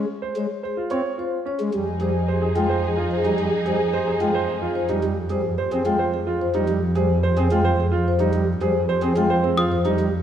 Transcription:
0.22 0.40 C5 medium
0.36 0.46 G#3 medium
0.36 0.54 C#5 medium
0.63 0.82 G#4 medium
0.63 0.81 C5 medium
0.77 0.95 F4 medium
0.91 1.01 C4 medium
0.91 1.09 C#5 medium
1.18 1.36 F4 medium
1.18 1.37 C5 medium
1.46 1.64 C#4 medium
1.46 1.64 C#5 medium
1.60 1.70 G#3 medium
1.73 10.22 F2 medium
1.73 1.84 G3 medium
1.73 4.86 D#4 medium
1.73 4.86 G#4 medium
1.73 1.94 G#4 soft
2.01 2.11 G3 medium
2.01 2.19 G#4 soft
2.01 2.22 G#4 soft
2.01 2.19 C5 medium
2.28 2.46 G4 soft
2.28 2.51 G#4 soft
2.28 2.46 C5 medium
2.42 2.60 G#4 medium
2.56 2.67 G#3 medium
2.56 2.74 F4 medium
2.56 2.79 G#4 medium
2.56 2.74 G5 medium
2.69 2.88 C5 medium
2.84 3.02 G#4 medium
2.84 3.08 G#4 medium
2.96 3.15 F4 medium
3.11 3.29 C5 medium
3.16 3.37 G#4 medium
3.24 3.35 G3 medium
3.24 3.42 D#4 soft
3.39 3.49 G3 medium
3.45 3.65 G#4 medium
3.65 3.77 G3 medium
3.65 3.84 G#4 medium
3.65 3.84 C5 medium
3.75 3.95 G#4 medium
3.93 4.11 G4 medium
3.93 4.11 C5 medium
4.03 4.23 G#4 medium
4.07 4.25 G#4 medium
4.20 4.31 G#3 medium
4.20 4.39 F4 medium
4.20 4.39 G5 medium
4.32 4.53 G#4 soft
4.32 4.53 C5 medium
4.49 4.67 G#4 medium
4.62 4.80 F4 medium
4.62 4.82 G#4 soft
4.75 4.94 C5 medium
4.89 5.00 G3 medium
4.89 5.08 D#4 soft
5.03 5.14 G3 medium
5.30 5.41 G3 medium
5.30 5.49 G#4 medium
5.30 5.49 C5 medium
5.58 5.76 G4 medium
5.58 5.76 C5 medium
5.72 5.83 C4 medium
5.72 5.90 G#4 medium
5.86 5.96 G#3 medium
5.86 6.04 F4 medium
5.86 6.04 G5 medium
5.99 6.18 C5 medium
6.14 6.32 G#4 medium
6.27 6.45 F4 medium
6.41 6.59 C5 medium
6.55 6.65 G3 medium
6.55 6.73 D#4 medium
6.68 6.79 G3 medium
6.95 7.07 G3 medium
6.95 7.14 G#4 medium
6.95 7.14 C5 medium
7.23 7.42 G4 medium
7.23 7.42 C5 medium
7.37 7.48 C4 medium
7.37 7.55 G#4 medium
7.51 7.62 G#3 medium
7.51 7.69 F4 medium
7.51 7.70 G5 medium
7.65 7.83 C5 medium
7.80 7.97 G#4 medium
7.92 8.10 F4 medium
8.08 8.25 C5 medium
8.20 8.30 G3 medium
8.20 8.38 D#4 medium
8.34 8.44 G3 medium
8.61 8.72 G3 medium
8.61 8.79 G#4 medium
8.61 8.79 C5 medium
8.89 9.07 G4 medium
8.89 9.07 C5 medium
9.02 9.13 C4 medium
9.02 9.20 G#4 medium
9.16 9.27 G#3 medium
9.16 9.34 F4 medium
9.16 9.35 G5 medium
9.30 9.48 C5 medium
9.43 9.62 C4 medium
9.43 9.62 G#4 medium
9.57 9.76 F4 medium
9.57 9.76 D#6 medium
9.72 9.89 C5 medium
9.85 9.96 G3 medium
9.85 10.03 D#4 medium
9.99 10.09 G3 medium

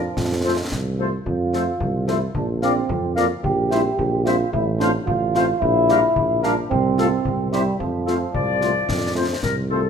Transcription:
0.00 0.94 F3 medium
0.17 0.62 F2 soft
0.17 concert bass drum medium
0.17 snare soft
0.44 0.54 F3 soft
0.44 0.54 A3 soft
0.44 0.54 F4 soft
0.44 0.55 A4 soft
0.44 0.54 C5 soft
0.44 0.55 C5 soft
0.71 1.17 C2 soft
0.71 concert bass drum medium
0.71 snare soft
0.99 1.09 F3 soft
0.99 1.09 A3 soft
0.99 1.08 F4 soft
0.99 1.09 A4 soft
0.99 1.09 C5 soft
1.26 1.71 F2 soft
1.26 2.04 F4 medium
1.26 concert bass drum medium
1.53 1.63 F3 soft
1.53 1.63 A3 soft
1.53 1.63 F4 soft
1.53 1.63 A4 soft
1.53 1.63 C5 soft
1.53 1.64 C5 soft
1.53 snare soft
1.80 2.25 C2 soft
1.80 concert bass drum medium
2.07 2.17 F3 soft
2.07 2.17 A3 soft
2.07 2.20 E4 medium
2.07 2.17 F4 soft
2.07 2.17 A4 soft
2.07 2.17 C5 soft
2.07 2.18 C5 soft
2.07 snare soft
2.35 2.80 A#1 soft
2.35 2.47 D4 medium
2.35 concert bass drum medium
2.62 2.72 F3 soft
2.62 2.72 A#3 soft
2.62 3.13 C4 medium
2.62 2.72 F4 soft
2.62 2.71 A#4 soft
2.62 2.72 D5 soft
2.62 2.72 F5 soft
2.62 snare soft
2.89 3.30 F2 soft
2.89 concert bass drum medium
3.15 3.26 F3 soft
3.15 3.26 A#3 soft
3.15 3.29 A#3 medium
3.15 3.26 F4 soft
3.15 3.26 A#4 soft
3.15 3.27 D5 soft
3.15 3.25 F5 soft
3.15 snare soft
3.43 3.89 A#1 medium
3.43 4.26 G4 medium
3.43 concert bass drum medium
3.70 3.81 G3 soft
3.70 3.81 C4 soft
3.70 3.81 E4 soft
3.70 3.80 C5 soft
3.70 3.81 C5 soft
3.70 3.81 E5 soft
3.70 snare soft
3.98 4.43 A#1 soft
3.98 concert bass drum medium
4.25 4.35 G3 soft
4.25 4.35 C4 soft
4.25 4.35 E4 soft
4.25 4.52 F4 medium
4.25 4.35 C5 soft
4.25 4.35 E5 soft
4.25 snare soft
4.53 4.98 A1 medium
4.53 4.65 E4 medium
4.53 concert bass drum medium
4.79 4.89 A3 soft
4.79 4.89 C4 soft
4.79 4.92 D4 medium
4.79 4.90 F4 soft
4.79 4.89 C5 soft
4.79 4.91 C5 medium
4.79 4.91 F5 medium
4.79 snare soft
5.06 5.52 A1 medium
5.06 5.62 F4 medium
5.06 concert bass drum medium
5.34 5.44 A3 soft
5.34 5.44 C4 soft
5.34 5.45 F4 medium
5.34 5.44 C5 soft
5.34 5.46 C5 medium
5.34 5.46 F5 soft
5.34 snare soft
5.60 6.07 A#1 medium
5.60 6.43 E4 medium
5.60 concert bass drum medium
5.89 5.98 G3 soft
5.89 5.99 D4 soft
5.89 5.99 F4 soft
5.89 5.99 G4 medium
5.89 5.99 A#4 soft
5.89 5.99 F5 medium
5.89 snare soft
6.16 6.61 A#1 medium
6.16 concert bass drum medium
6.43 6.53 G3 soft
6.43 6.53 D4 soft
6.43 6.56 D4 medium
6.43 6.53 F4 soft
6.43 6.53 G4 soft
6.43 6.53 A#4 soft
6.43 6.53 F5 soft
6.43 snare soft
6.70 7.16 C2 medium
6.70 7.48 C4 medium
6.70 concert bass drum medium
6.98 7.08 A3 soft
6.98 7.08 C4 soft
6.98 7.08 F4 soft
6.98 7.08 A4 soft
6.98 7.08 F5 soft
6.98 snare soft
7.25 7.71 C2 medium
7.25 concert bass drum medium
7.51 7.77 G3 medium
7.51 7.62 G3 soft
7.51 7.62 C4 soft
7.51 7.62 E4 soft
7.51 7.61 G4 soft
7.51 7.62 C5 soft
7.51 7.62 E5 soft
7.51 snare soft
7.79 8.25 F2 soft
7.79 9.39 F3 medium
7.79 concert bass drum medium
8.06 8.17 A3 soft
8.06 8.17 C4 soft
8.06 8.17 F4 soft
8.06 8.16 A4 soft
8.06 8.17 C5 soft
8.06 8.16 F5 soft
8.06 snare soft
8.33 8.80 C2 soft
8.33 9.11 D5 medium
8.33 concert bass drum medium
8.61 8.72 A3 soft
8.61 8.71 C4 soft
8.61 8.71 F4 soft
8.61 8.71 C5 soft
8.61 snare soft
8.89 9.34 F2 soft
8.89 concert bass drum medium
8.89 snare soft
9.15 9.25 A3 soft
9.15 9.25 C4 soft
9.15 9.25 F4 soft
9.15 9.43 C5 soft
9.15 9.25 C5 soft
9.43 9.88 C2 soft
9.43 9.55 A#4 soft
9.43 concert bass drum medium
9.43 snare soft
9.70 9.80 A3 soft
9.70 9.80 C4 soft
9.70 9.80 F4 soft
9.70 9.89 A4 soft
9.70 9.80 C5 soft

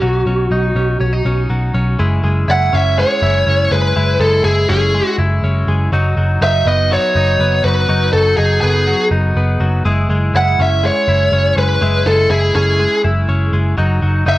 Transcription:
0.00 0.22 B1 loud
0.00 1.49 F#3 medium
0.00 0.26 C#4 medium
0.00 0.50 D#4 medium
0.00 1.45 F#4 medium
0.26 0.47 B1 medium
0.26 0.76 C#4 medium
0.51 0.71 B1 medium
0.51 1.00 D#4 medium
0.75 0.96 B1 loud
0.75 1.01 C#4 medium
1.00 1.20 B1 loud
1.00 1.13 C#4 medium
1.13 2.00 D#4 medium
1.25 1.45 B1 loud
1.25 1.74 C#4 medium
1.50 1.70 B1 medium
1.50 1.99 F#3 medium
1.74 1.95 B1 medium
1.74 2.72 C#4 medium
1.99 2.19 F#1 medium
1.99 2.23 G#3 medium
1.99 2.47 E4 medium
2.23 2.44 F#1 medium
2.23 2.96 G#3 medium
2.48 2.68 F#1 loud
2.48 3.21 E4 medium
2.48 2.75 F#5 loud
2.73 3.03 F#1 loud
2.73 3.46 C#4 medium
2.73 2.99 E5 medium
2.98 3.71 G#3 medium
2.98 3.74 C#5 loud
3.22 3.42 F#1 loud
3.22 3.95 E4 medium
3.47 3.67 F#1 loud
3.47 4.68 C#4 medium
3.71 3.91 F#1 loud
3.71 3.95 G#3 medium
3.71 4.20 B4 loud
3.96 4.16 F#1 loud
3.96 4.19 G#3 medium
3.96 4.44 E4 medium
4.20 4.40 F#1 loud
4.20 4.93 G#3 medium
4.20 4.44 A4 medium
4.44 4.64 F#1 loud
4.44 5.17 E4 medium
4.44 4.68 G#4 medium
4.69 5.00 F#1 loud
4.69 5.43 C#4 medium
4.69 5.15 G#4 medium
4.94 5.67 G#3 medium
5.18 5.39 F#1 loud
5.18 5.92 E4 medium
5.43 5.63 F#1 loud
5.43 5.97 C#4 medium
5.67 5.88 F#1 loud
5.67 5.92 G#3 medium
5.92 6.12 F#1 loud
5.92 6.16 F#3 medium
5.92 6.40 D#4 medium
6.17 6.37 F#1 medium
6.17 6.90 F#3 medium
6.41 6.61 F#1 loud
6.41 7.15 D#4 medium
6.41 6.67 E5 loud
6.66 6.96 F#1 loud
6.66 7.39 B3 medium
6.66 6.92 D#5 loud
6.91 7.64 F#3 medium
6.91 7.61 C#5 loud
7.15 7.35 F#1 loud
7.15 7.88 D#4 medium
7.39 7.60 F#1 loud
7.39 8.62 B3 medium
7.64 7.84 F#1 medium
7.64 7.88 F#3 medium
7.64 8.12 B4 loud
7.89 8.09 F#1 loud
7.89 8.12 F#3 medium
7.89 8.37 D#4 medium
8.13 8.33 F#1 loud
8.13 8.86 F#3 medium
8.13 8.36 A4 medium
8.37 8.58 F#1 medium
8.37 9.10 D#4 medium
8.37 8.60 G#4 medium
8.61 8.93 F#1 medium
8.61 9.35 B3 medium
8.61 9.07 G#4 medium
8.87 9.59 F#3 medium
9.11 9.31 F#1 loud
9.11 9.85 D#4 medium
9.35 9.56 F#1 loud
9.35 9.90 B3 medium
9.60 9.80 F#1 loud
9.60 9.85 F#3 medium
9.85 10.05 F#1 loud
9.85 10.09 G#3 medium
9.85 10.34 E4 medium
10.09 10.30 F#1 loud
10.09 10.82 G#3 medium
10.34 10.54 F#1 loud
10.34 11.07 E4 medium
10.34 10.58 F#5 loud
10.59 10.89 F#1 loud
10.59 11.32 C#4 medium
10.59 10.85 E5 medium
10.83 11.56 G#3 medium
10.83 11.54 C#5 loud
11.08 11.28 F#1 loud
11.08 11.81 E4 medium
11.32 11.52 F#1 loud
11.32 12.54 C#4 medium
11.57 11.77 F#1 medium
11.57 11.81 G#3 medium
11.57 12.07 B4 loud
11.82 12.02 F#1 loud
11.82 12.05 G#3 medium
11.82 12.29 E4 medium
12.06 12.26 F#1 loud
12.06 12.78 G#3 medium
12.06 12.30 A4 medium
12.30 12.50 F#1 loud
12.30 13.03 E4 medium
12.30 12.54 G#4 medium
12.55 12.85 F#1 loud
12.55 13.27 C#4 medium
12.55 13.01 G#4 medium
12.80 13.52 G#3 medium
13.04 13.25 F#1 loud
13.04 13.78 E4 medium
13.28 13.49 F#1 loud
13.28 13.83 C#4 medium
13.52 13.73 F#1 loud
13.52 13.77 G#3 medium
13.78 13.98 F#1 loud
13.78 14.01 F#3 medium
13.78 14.25 D#4 medium
14.02 14.22 F#1 loud
14.02 14.38 F#3 medium
14.26 14.38 F#1 loud
14.26 14.38 D#4 medium
14.26 14.38 E5 loud

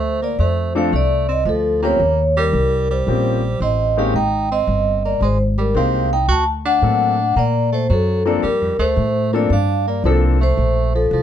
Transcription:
0.00 0.37 D2 medium
0.00 0.19 A3 medium
0.00 0.23 C5 medium
0.22 0.38 A#3 medium
0.22 0.41 D5 medium
0.39 0.91 F2 medium
0.39 0.73 A3 medium
0.39 0.74 C5 medium
0.75 0.91 F3 medium
0.75 0.91 A3 medium
0.75 0.91 C4 medium
0.75 0.91 D4 medium
0.75 0.91 A4 medium
0.75 0.94 F5 medium
0.92 1.44 C2 medium
0.92 1.26 A3 medium
0.92 1.31 D5 medium
1.28 1.45 C4 medium
1.28 1.48 D#5 medium
1.45 1.98 D2 medium
1.45 1.79 F3 medium
1.45 1.85 A4 medium
1.83 1.98 F3 medium
1.83 2.22 A#3 medium
1.83 1.98 A#3 medium
1.83 1.99 C4 medium
1.83 1.99 C#4 medium
1.83 1.99 G4 medium
1.83 2.33 C#5 medium
2.00 2.52 D#2 medium
2.37 2.86 G3 medium
2.37 2.87 A#4 medium
2.53 3.05 C2 medium
2.91 3.57 G3 medium
2.91 3.64 C5 medium
3.07 3.59 A#1 medium
3.07 3.40 F3 medium
3.07 3.40 A#3 medium
3.07 3.40 C4 medium
3.07 3.40 C#4 medium
3.07 3.40 G4 medium
3.60 4.13 A1 medium
3.60 3.95 C4 medium
3.60 3.99 D#5 medium
3.97 4.13 G#3 medium
3.97 4.13 A#3 medium
3.97 4.13 C4 medium
3.97 4.14 C#4 medium
3.97 4.13 D#4 medium
3.97 4.13 G4 medium
3.97 4.14 F5 medium
4.14 4.66 G#1 medium
4.14 4.48 D#4 medium
4.14 4.49 G5 medium
4.51 5.01 C4 medium
4.51 5.06 D#5 medium
4.67 5.20 G1 medium
5.05 5.21 A#3 medium
5.05 5.21 D5 medium
5.21 5.73 G#1 medium
5.21 5.38 G#3 medium
5.21 5.40 C5 medium
5.58 5.74 G3 medium
5.58 5.77 A#4 medium
5.75 6.27 C2 medium
5.75 6.07 G#3 medium
5.75 6.08 A#3 medium
5.75 6.08 C4 medium
5.75 6.09 C4 medium
5.75 6.08 D#4 medium
5.75 6.08 G4 medium
5.75 6.13 F5 medium
6.13 6.28 D#4 medium
6.13 6.29 G5 loud
6.28 6.80 D2 medium
6.28 6.45 F#4 medium
6.28 6.47 A5 loud
6.65 7.32 D4 medium
6.65 7.39 F#5 medium
6.82 7.34 A2 medium
6.82 7.15 F#3 medium
6.82 7.15 A#3 medium
6.82 7.15 C4 soft
6.82 7.15 D4 soft
6.82 7.15 A4 medium
7.36 7.88 A#2 medium
7.36 7.70 A#3 medium
7.36 7.71 D5 medium
7.72 7.89 A3 medium
7.72 7.91 C5 medium
7.90 8.42 F#2 medium
7.90 8.23 F#3 medium
7.90 8.28 A4 medium
8.25 8.41 F3 medium
8.25 8.42 A#3 medium
8.25 8.41 A#3 medium
8.25 8.42 C4 medium
8.25 8.42 D4 medium
8.25 8.42 A4 medium
8.25 8.43 D5 medium
8.43 8.61 G2 medium
8.43 8.76 G3 medium
8.43 8.81 A#4 medium
8.61 8.78 F2 medium
8.78 8.95 D2 medium
8.78 9.29 A3 medium
8.78 9.30 C5 medium
8.97 9.49 A2 medium
9.33 9.49 F3 medium
9.33 9.49 A#3 medium
9.33 9.49 C4 medium
9.33 9.49 D4 medium
9.33 9.49 A4 medium
9.33 9.52 D5 medium
9.50 10.02 G2 medium
9.50 9.85 D4 medium
9.50 9.85 F5 medium
9.87 10.03 A#3 medium
9.87 10.06 D5 medium
10.04 10.56 C2 medium
10.04 10.21 F3 medium
10.04 10.37 F3 medium
10.04 10.37 A#3 medium
10.04 10.37 C4 medium
10.04 10.37 D4 medium
10.04 10.37 A4 medium
10.04 10.22 A4 medium
10.41 10.90 A3 medium
10.41 10.97 C5 loud
10.57 11.10 A#1 medium
10.95 11.11 F3 medium
10.95 11.11 A4 medium
11.11 11.23 C2 medium
11.11 11.23 F3 medium
11.11 11.23 A4 medium

